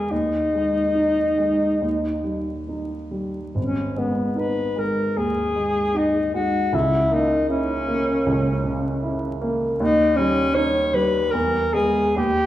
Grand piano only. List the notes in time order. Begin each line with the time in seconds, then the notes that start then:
Already playing: E2 G#3 B3
0.11 D#2
0.54 G#3
0.95 D#4
1.38 G#3
1.81 D#2
2.24 G3
2.69 D#4
3.11 G3
3.55 G#1
3.96 G#3
4.36 D#4
4.76 G#3
5.17 D#2
5.56 G#3
5.94 D#4
6.34 G#3
6.73 C#2
7.11 A#3
7.50 E4
7.88 A#3
8.26 C#2
8.64 C#3
9.03 E4
9.41 A#3
9.80 D#2
10.18 G3
10.55 D#4
10.94 G3
11.33 E2
11.74 G#3 B3
12.16 D#2